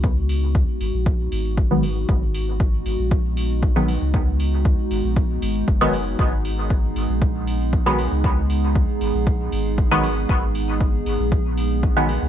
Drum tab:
HH |--o---o---oo--o-|--o---o---oo--o-|--o---o---oo--o-|--o---o---oo--o-|
BD |o---o---o---o---|o---o---o---o---|o---o---o---o---|o---o---o---o---|

HH |--o---o---oo--o-|--o---o---oo--o-|
BD |o---o---o---o---|o---o---o---o---|